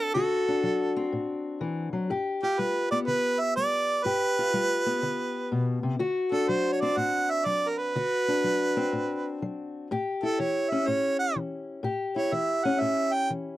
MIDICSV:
0, 0, Header, 1, 3, 480
1, 0, Start_track
1, 0, Tempo, 487013
1, 153, Time_signature, 4, 2, 24, 8
1, 13375, End_track
2, 0, Start_track
2, 0, Title_t, "Harmonica"
2, 0, Program_c, 0, 22
2, 0, Note_on_c, 0, 71, 90
2, 119, Note_off_c, 0, 71, 0
2, 141, Note_on_c, 0, 69, 76
2, 1067, Note_off_c, 0, 69, 0
2, 2396, Note_on_c, 0, 67, 76
2, 2556, Note_on_c, 0, 71, 80
2, 2571, Note_off_c, 0, 67, 0
2, 2864, Note_off_c, 0, 71, 0
2, 2869, Note_on_c, 0, 74, 83
2, 2943, Note_off_c, 0, 74, 0
2, 3025, Note_on_c, 0, 71, 94
2, 3346, Note_on_c, 0, 76, 102
2, 3361, Note_off_c, 0, 71, 0
2, 3504, Note_off_c, 0, 76, 0
2, 3510, Note_on_c, 0, 74, 97
2, 3977, Note_on_c, 0, 71, 91
2, 3992, Note_off_c, 0, 74, 0
2, 5743, Note_off_c, 0, 71, 0
2, 6230, Note_on_c, 0, 69, 78
2, 6392, Note_on_c, 0, 72, 86
2, 6407, Note_off_c, 0, 69, 0
2, 6627, Note_on_c, 0, 73, 69
2, 6642, Note_off_c, 0, 72, 0
2, 6708, Note_on_c, 0, 74, 87
2, 6723, Note_off_c, 0, 73, 0
2, 6874, Note_on_c, 0, 78, 99
2, 6889, Note_off_c, 0, 74, 0
2, 7197, Note_on_c, 0, 76, 91
2, 7212, Note_off_c, 0, 78, 0
2, 7349, Note_on_c, 0, 74, 89
2, 7364, Note_off_c, 0, 76, 0
2, 7578, Note_on_c, 0, 70, 58
2, 7593, Note_off_c, 0, 74, 0
2, 7670, Note_on_c, 0, 71, 94
2, 7685, Note_off_c, 0, 70, 0
2, 9273, Note_off_c, 0, 71, 0
2, 10087, Note_on_c, 0, 69, 72
2, 10249, Note_on_c, 0, 73, 75
2, 10264, Note_off_c, 0, 69, 0
2, 10550, Note_on_c, 0, 76, 81
2, 10565, Note_off_c, 0, 73, 0
2, 10718, Note_on_c, 0, 73, 87
2, 10732, Note_off_c, 0, 76, 0
2, 11025, Note_off_c, 0, 73, 0
2, 11031, Note_on_c, 0, 78, 85
2, 11181, Note_off_c, 0, 78, 0
2, 11996, Note_on_c, 0, 73, 74
2, 12156, Note_on_c, 0, 76, 83
2, 12171, Note_off_c, 0, 73, 0
2, 12465, Note_on_c, 0, 78, 84
2, 12480, Note_off_c, 0, 76, 0
2, 12615, Note_on_c, 0, 76, 95
2, 12630, Note_off_c, 0, 78, 0
2, 12941, Note_on_c, 0, 79, 92
2, 12956, Note_off_c, 0, 76, 0
2, 13106, Note_off_c, 0, 79, 0
2, 13375, End_track
3, 0, Start_track
3, 0, Title_t, "Steel-string acoustic guitar"
3, 0, Program_c, 1, 25
3, 0, Note_on_c, 1, 54, 60
3, 0, Note_on_c, 1, 60, 56
3, 0, Note_on_c, 1, 62, 56
3, 0, Note_on_c, 1, 66, 62
3, 120, Note_off_c, 1, 54, 0
3, 137, Note_off_c, 1, 60, 0
3, 147, Note_on_c, 1, 50, 76
3, 150, Note_off_c, 1, 66, 0
3, 162, Note_on_c, 1, 66, 69
3, 473, Note_off_c, 1, 62, 0
3, 477, Note_on_c, 1, 62, 53
3, 597, Note_off_c, 1, 50, 0
3, 625, Note_on_c, 1, 54, 65
3, 950, Note_on_c, 1, 60, 54
3, 1076, Note_off_c, 1, 54, 0
3, 1109, Note_on_c, 1, 45, 54
3, 1558, Note_off_c, 1, 45, 0
3, 1584, Note_on_c, 1, 52, 58
3, 1896, Note_off_c, 1, 52, 0
3, 1900, Note_on_c, 1, 54, 59
3, 2053, Note_off_c, 1, 60, 0
3, 2067, Note_off_c, 1, 54, 0
3, 2069, Note_on_c, 1, 43, 64
3, 2072, Note_off_c, 1, 66, 0
3, 2076, Note_on_c, 1, 67, 65
3, 2391, Note_off_c, 1, 62, 0
3, 2395, Note_on_c, 1, 65, 49
3, 2518, Note_off_c, 1, 43, 0
3, 2552, Note_on_c, 1, 55, 60
3, 2877, Note_on_c, 1, 59, 58
3, 2999, Note_off_c, 1, 55, 0
3, 3030, Note_on_c, 1, 50, 57
3, 3478, Note_off_c, 1, 50, 0
3, 3519, Note_on_c, 1, 55, 60
3, 3963, Note_off_c, 1, 55, 0
3, 3974, Note_off_c, 1, 67, 0
3, 3975, Note_off_c, 1, 65, 0
3, 3976, Note_off_c, 1, 59, 0
3, 3992, Note_on_c, 1, 43, 73
3, 3997, Note_on_c, 1, 67, 63
3, 4324, Note_on_c, 1, 65, 52
3, 4440, Note_off_c, 1, 43, 0
3, 4471, Note_on_c, 1, 55, 59
3, 4793, Note_on_c, 1, 59, 55
3, 4919, Note_off_c, 1, 55, 0
3, 4952, Note_on_c, 1, 50, 59
3, 5400, Note_off_c, 1, 50, 0
3, 5438, Note_on_c, 1, 47, 57
3, 5743, Note_off_c, 1, 47, 0
3, 5747, Note_on_c, 1, 48, 57
3, 5895, Note_off_c, 1, 59, 0
3, 5895, Note_off_c, 1, 67, 0
3, 5900, Note_off_c, 1, 65, 0
3, 5903, Note_off_c, 1, 48, 0
3, 5907, Note_on_c, 1, 50, 73
3, 5912, Note_on_c, 1, 66, 70
3, 6227, Note_on_c, 1, 62, 59
3, 6357, Note_off_c, 1, 50, 0
3, 6396, Note_on_c, 1, 54, 65
3, 6725, Note_on_c, 1, 60, 60
3, 6842, Note_off_c, 1, 54, 0
3, 6867, Note_on_c, 1, 45, 61
3, 7317, Note_off_c, 1, 45, 0
3, 7352, Note_on_c, 1, 54, 59
3, 7800, Note_off_c, 1, 54, 0
3, 7812, Note_off_c, 1, 62, 0
3, 7821, Note_off_c, 1, 60, 0
3, 7833, Note_off_c, 1, 66, 0
3, 7840, Note_on_c, 1, 50, 67
3, 7848, Note_on_c, 1, 66, 61
3, 8163, Note_on_c, 1, 62, 57
3, 8284, Note_off_c, 1, 50, 0
3, 8318, Note_on_c, 1, 54, 62
3, 8641, Note_on_c, 1, 60, 57
3, 8763, Note_off_c, 1, 54, 0
3, 8794, Note_on_c, 1, 45, 59
3, 9241, Note_off_c, 1, 45, 0
3, 9287, Note_on_c, 1, 54, 55
3, 9727, Note_off_c, 1, 54, 0
3, 9738, Note_off_c, 1, 60, 0
3, 9739, Note_off_c, 1, 62, 0
3, 9760, Note_off_c, 1, 66, 0
3, 9768, Note_on_c, 1, 45, 72
3, 9775, Note_on_c, 1, 67, 62
3, 10083, Note_on_c, 1, 64, 54
3, 10208, Note_off_c, 1, 45, 0
3, 10245, Note_on_c, 1, 52, 61
3, 10566, Note_on_c, 1, 61, 56
3, 10686, Note_off_c, 1, 52, 0
3, 10717, Note_on_c, 1, 45, 63
3, 11162, Note_off_c, 1, 45, 0
3, 11196, Note_on_c, 1, 52, 57
3, 11641, Note_off_c, 1, 52, 0
3, 11658, Note_off_c, 1, 64, 0
3, 11659, Note_off_c, 1, 61, 0
3, 11659, Note_on_c, 1, 45, 71
3, 11660, Note_off_c, 1, 67, 0
3, 11672, Note_on_c, 1, 67, 65
3, 11985, Note_on_c, 1, 64, 51
3, 12112, Note_off_c, 1, 45, 0
3, 12145, Note_on_c, 1, 52, 61
3, 12470, Note_on_c, 1, 61, 52
3, 12595, Note_off_c, 1, 52, 0
3, 12624, Note_on_c, 1, 45, 62
3, 13074, Note_off_c, 1, 45, 0
3, 13111, Note_on_c, 1, 52, 59
3, 13375, Note_off_c, 1, 52, 0
3, 13375, Note_off_c, 1, 61, 0
3, 13375, Note_off_c, 1, 64, 0
3, 13375, Note_off_c, 1, 67, 0
3, 13375, End_track
0, 0, End_of_file